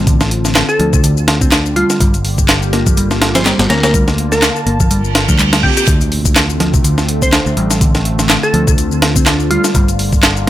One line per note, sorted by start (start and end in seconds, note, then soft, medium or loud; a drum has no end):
0.00 0.62 A1 loud
0.00 1.96 D3 medium
0.00 1.97 C4 medium
0.00 1.96 F4 medium
0.00 1.96 A5 medium
0.07 0.20 D3 medium
0.07 kick loud
0.07 closed hi-hat medium
0.07 shaker soft
0.21 snare medium
0.21 shaker soft
0.31 closed hi-hat medium
0.45 snare soft
0.45 shaker medium
0.55 snare loud
0.55 clap loud
0.55 closed hi-hat medium
0.55 shaker soft
0.69 0.87 A4 medium
0.69 shaker soft
0.79 1.83 D2 medium
0.79 0.89 F3 medium
0.79 closed hi-hat medium
0.93 1.03 C3 medium
0.93 kick medium
0.93 shaker medium
1.03 1.14 D3 medium
1.03 closed hi-hat medium
1.03 shaker soft
1.17 shaker soft
1.28 snare loud
1.28 closed hi-hat medium
1.41 1.51 C4 medium
1.41 kick medium
1.41 shaker medium
1.52 1.75 D4 loud
1.52 snare loud
1.52 clap loud
1.52 closed hi-hat medium
1.52 shaker soft
1.66 shaker soft
1.76 1.99 G3 medium
1.76 2.06 F4 medium
1.76 closed hi-hat medium
1.90 snare soft
1.90 shaker medium
2.00 3.52 G1 loud
2.00 5.84 D3 medium
2.00 2.13 G3 medium
2.00 5.84 A#3 medium
2.00 5.84 F4 medium
2.00 3.92 G4 medium
2.00 kick loud
2.00 closed hi-hat medium
2.00 shaker medium
2.14 closed hi-hat soft
2.14 shaker soft
2.25 open hi-hat medium
2.38 kick medium
2.38 shaker medium
2.49 snare loud
2.49 clap loud
2.49 closed hi-hat medium
2.49 shaker soft
2.62 shaker soft
2.73 2.83 A#3 medium
2.73 snare medium
2.73 closed hi-hat medium
2.86 2.97 F3 medium
2.86 kick loud
2.86 shaker medium
2.97 3.07 G3 medium
2.97 closed hi-hat medium
2.97 shaker soft
3.11 snare soft
3.11 shaker soft
3.22 snare loud
3.22 closed hi-hat medium
3.35 3.44 F3 medium
3.35 3.53 C5 medium
3.35 snare loud
3.35 closed hi-hat medium
3.35 shaker medium
3.46 3.69 G3 loud
3.46 snare loud
3.46 clap loud
3.46 closed hi-hat medium
3.46 shaker soft
3.59 3.66 G1 medium
3.59 snare loud
3.59 closed hi-hat medium
3.59 shaker soft
3.70 4.49 D2 loud
3.70 3.93 C4 medium
3.70 3.78 A#4 medium
3.70 snare loud
3.70 closed hi-hat medium
3.83 3.90 A#4 medium
3.83 snare loud
3.83 closed hi-hat medium
3.83 shaker medium
3.94 4.07 G3 medium
3.94 5.86 A5 medium
3.94 kick loud
3.94 closed hi-hat medium
3.94 shaker medium
4.08 snare medium
4.08 shaker soft
4.18 closed hi-hat medium
4.32 4.67 A#4 medium
4.32 snare soft
4.32 shaker medium
4.42 snare loud
4.42 clap loud
4.42 closed hi-hat medium
4.42 shaker medium
4.56 shaker soft
4.66 5.28 G1 medium
4.66 4.77 A#3 medium
4.66 closed hi-hat medium
4.80 4.90 F3 medium
4.80 kick medium
4.80 shaker medium
4.91 5.01 G3 medium
4.91 closed hi-hat medium
4.91 reverse cymbal medium
4.91 shaker soft
5.04 shaker soft
5.15 snare loud
5.15 closed hi-hat medium
5.28 5.70 D2 medium
5.28 5.38 F3 medium
5.28 kick medium
5.28 shaker medium
5.39 5.62 G3 loud
5.39 clap loud
5.39 closed hi-hat medium
5.39 shaker medium
5.53 snare loud
5.53 closed hi-hat medium
5.53 shaker soft
5.63 5.87 C4 medium
5.63 5.72 G4 medium
5.63 kick medium
5.77 5.84 G4 medium
5.77 closed hi-hat medium
5.77 shaker medium
5.87 7.39 D2 loud
5.87 10.50 D3 medium
5.87 6.00 D3 medium
5.87 9.71 A3 medium
5.87 9.71 C4 medium
5.87 10.50 F4 medium
5.87 kick loud
5.87 closed hi-hat medium
5.87 impact medium
5.87 shaker medium
6.01 closed hi-hat soft
6.01 shaker soft
6.12 open hi-hat medium
6.25 kick medium
6.25 shaker medium
6.36 snare loud
6.36 clap loud
6.36 closed hi-hat medium
6.36 shaker medium
6.49 shaker soft
6.60 6.70 F3 medium
6.60 snare medium
6.60 closed hi-hat medium
6.74 6.84 C3 medium
6.74 kick medium
6.74 shaker medium
6.84 6.94 D3 medium
6.84 closed hi-hat medium
6.84 shaker medium
6.98 snare soft
6.98 shaker soft
7.09 closed hi-hat medium
7.22 7.32 C4 medium
7.22 7.40 C5 medium
7.22 kick loud
7.22 shaker medium
7.33 7.56 D4 loud
7.33 snare loud
7.33 clap loud
7.33 closed hi-hat medium
7.33 shaker medium
7.46 7.53 D2 medium
7.46 shaker soft
7.57 8.36 A1 loud
7.57 7.80 G3 medium
7.57 closed hi-hat medium
7.70 snare soft
7.70 shaker medium
7.81 7.94 D3 medium
7.81 kick loud
7.81 closed hi-hat medium
7.81 shaker medium
7.95 snare medium
7.95 shaker soft
8.05 closed hi-hat medium
8.19 snare soft
8.19 shaker medium
8.29 snare loud
8.29 clap loud
8.29 closed hi-hat medium
8.29 shaker medium
8.43 8.61 A4 medium
8.43 shaker soft
8.54 9.57 D2 medium
8.54 8.64 F3 medium
8.54 closed hi-hat medium
8.67 8.77 C3 medium
8.67 kick medium
8.67 shaker medium
8.78 8.88 D3 medium
8.78 closed hi-hat medium
8.78 shaker medium
8.92 shaker soft
9.02 snare loud
9.02 closed hi-hat medium
9.16 9.25 C4 medium
9.16 kick loud
9.16 shaker medium
9.26 9.49 D4 loud
9.26 snare loud
9.26 clap loud
9.26 closed hi-hat medium
9.26 shaker medium
9.40 shaker soft
9.50 9.74 G3 medium
9.50 9.80 F4 medium
9.50 closed hi-hat medium
9.64 snare soft
9.64 shaker medium
9.75 10.50 G1 loud
9.75 10.50 G3 medium
9.75 9.88 G3 medium
9.75 10.50 A#3 medium
9.75 kick loud
9.75 closed hi-hat medium
9.75 shaker medium
9.88 closed hi-hat soft
9.88 shaker soft
9.99 open hi-hat medium
10.12 kick medium
10.12 shaker medium
10.23 snare loud
10.23 clap loud
10.23 closed hi-hat medium
10.23 shaker medium
10.37 shaker soft